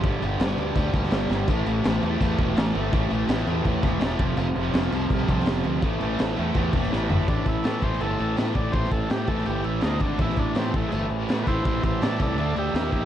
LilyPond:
<<
  \new Staff \with { instrumentName = "Transistor combo organ" } { \time 4/4 \key a \minor \tempo 4 = 165 r1 | r1 | r1 | r1 |
r1 | d'8 e'8 a'8 c''8 a'4 r8 d''8 | c''8 a'8 g'8 a'8 g'8 e'8 dis'8 d'8 | e'8 d'8 c'8 a8 <gis a>8 r4 <e' b' c''>8 |
<e' c''>8 <e' c''>8 <a' d''>8 <a' d''>8 <a' d''>8 <g' e''>8 <g' e''>8 <g' e''>8 | }
  \new Staff \with { instrumentName = "Distorted electric guitar" } { \clef bass \time 4/4 \key a \minor <g, d g>8 <g, d g>8 <g, d g>8 <g, d g>8 <g, d g>8 <g, d g>8 <g, d g>8 <g, d g>8 | <a, e a>8 <a, e a>8 <a, e a>8 <a, e a>8 <a, e a>8 <a, e a>8 <a, e a>8 <a, e a>8 | <a, e a>8 <a, e a>8 <a, e a>8 <a, e a>8 <a, e a>8 <a, e a>8 <a, e a>8 <f, c f>8 | <f, c f>8 <f, c f>8 <f, c f>8 <f, c f>8 <f, c f>8 <f, c f>8 <f, c f>8 <f, c f>8 |
<a, e a>8 <a, e a>8 <a, e a>8 <a, e a>8 <a, e a>8 <a, e a>8 <a, e a>8 <a, e a>8 | <a, e a>4 <a, e a>8 <a, e a>8 <a, e a>4 <a, e a>8 <a, e a>8 | <a, e a>4 <a, e a>8 <a, e a>8 <a, e a>4 <d a d'>8 <d a d'>8 | <a, e a>4 <a, e a>8 <a, e a>8 <a, e a>4 <a, e a>8 <a, e a>8 |
<a, e a>4 <a, e a>8 <a, e a>8 <d a d'>4 <dis ais dis'>8 <dis ais dis'>8 | }
  \new Staff \with { instrumentName = "Fingered electric bass" } { \clef bass \time 4/4 \key a \minor g,,8 g,,8 g,,8 d,8 d,8 d,8 g,,8 g,,8 | a,,8 a,,8 a,,8 e,8 e,8 e,,8 a,,8 g,,8 | a,,8 a,,8 a,,8 e,8 e,8 e,,8 e,,8 f,,8 | f,,8 f,,8 f,,8 c,8 c,8 c,8 f,,8 d,8 |
a,,8 a,,8 a,,8 e,8 e,8 e,,8 a,,8 g,,8 | a,,8 a,,8 a,8 a,,8 g,,8 a,,8 a,8 a,,8 | a,,8 a,,8 a,8 a,,8 g,,8 a,,8 d,8 gis,,8 | a,,8 a,,8 a,8 a,,8 g,,8 a,,8 a,8 a,,8 |
a,,8 a,,8 a,8 c,8 d,8 d,8 dis,8 ais,,8 | }
  \new DrumStaff \with { instrumentName = "Drums" } \drummode { \time 4/4 <cymc bd>8 cymc8 <cymc sn>8 cymc8 <cymc bd>8 <cymc bd>16 sn16 <cymc sn>8 sn8 | <cymc bd>8 cymc8 <cymc sn>8 cymc8 <cymc bd>8 <cymc bd>8 <cymc sn>8 cymc8 | <cymc bd>8 cymc8 <cymc sn>8 cymc8 <cymc bd>8 <cymc bd sn>8 <cymc sn>8 <cymc bd>8 | cymc8 cymc8 <cymc sn>8 cymc8 <cymc bd>8 <cymc bd>16 sn16 <cymc sn>8 cymc8 |
<cymc bd>8 cymc8 <cymc sn>8 cymc8 <cymc bd>8 <cymc bd>16 sn16 sn8 tomfh8 | <cymc bd>8 <cymc bd>8 <cymc sn>8 <cymc bd>16 sn16 cymc8 cymc8 <cymc sn>8 <cymc bd>8 | <cymc bd>16 sn16 <cymc bd>8 <cymc sn>8 <cymc bd>16 sn16 cymc8 cymc8 <cymc sn>8 <cymc bd>8 | <cymc bd>16 sn16 <cymc bd>8 <cymc sn>8 <cymc bd>8 cymc8 cymc8 <cymc sn>8 <cymc bd>8 |
<cymc bd>8 <cymc bd>8 <cymc sn>8 <cymc bd>8 cymc8 cymc8 <cymc sn>8 <cymc bd>8 | }
>>